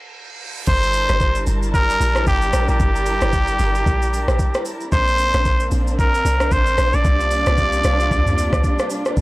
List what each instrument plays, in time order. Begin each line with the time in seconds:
Already playing: reverse cymbal
0.67 log drum bass G1, string section G3 D4 E4 A#4 A5, muted trumpet C5, kick, crash, shaker
0.83 shaker
0.94 open hi-hat, shaker
1.09 log drum bass G1, cross-stick, shaker
1.20 kick, shaker
1.35 shaker
1.47 log drum bass G1, open hi-hat, shaker
1.63 shaker
1.74 muted trumpet A#4, kick, shaker
1.90 shaker
2.00 log drum bass A#1, open hi-hat, shaker
2.16 cross-stick, shaker
2.27 log drum bass G1, muted trumpet G4, kick, shaker
2.42 shaker
2.53 log drum bass A#1, cross-stick, open hi-hat, shaker
2.68 log drum bass A#1, muted trumpet G4, shaker
2.80 log drum bass G1, kick, shaker
2.96 shaker
3.06 open hi-hat, shaker
3.21 log drum bass G1, cross-stick, shaker
3.33 kick, shaker
3.48 shaker
3.59 log drum bass G1, open hi-hat, shaker
3.75 shaker
3.86 log drum bass A#1, kick, shaker
4.02 shaker
4.14 open hi-hat, shaker
4.28 log drum bass A#1, cross-stick, shaker
4.39 kick, shaker
4.54 cross-stick, shaker
4.65 open hi-hat, shaker
4.81 shaker
4.92 log drum bass A#1, string section A#3 C4 D4, muted trumpet C5, kick, shaker
5.08 shaker
5.18 open hi-hat, shaker
5.34 log drum bass A#1, cross-stick, shaker
5.45 kick, shaker
5.60 shaker
5.71 log drum bass A#1, open hi-hat, shaker
5.88 shaker
5.99 muted trumpet A#4, kick, shaker
6.15 shaker
6.25 log drum bass C2, open hi-hat, shaker
6.40 cross-stick, shaker
6.52 log drum bass A1, muted trumpet C5, kick, shaker
6.67 shaker
6.78 log drum bass A#1, cross-stick, open hi-hat, shaker
6.93 log drum bass A#1, muted trumpet D5, shaker
7.05 log drum bass C2, string section C3 G3 A#3 F4, kick, shaker
7.21 shaker
7.31 open hi-hat, shaker
7.46 log drum bass C2, cross-stick, shaker
7.58 kick, shaker
7.73 shaker
7.84 log drum bass C2, cross-stick, open hi-hat, shaker
8.00 shaker
8.11 log drum bass D2, kick, shaker
8.26 mid tom, shaker
8.38 open hi-hat, shaker
8.53 log drum bass D2, kick, cross-stick, shaker
8.64 kick, shaker
8.79 cross-stick, shaker
8.90 open hi-hat, shaker
9.06 cross-stick, shaker
9.17 log drum bass G1, string section E4 A#4 A5, kick, shaker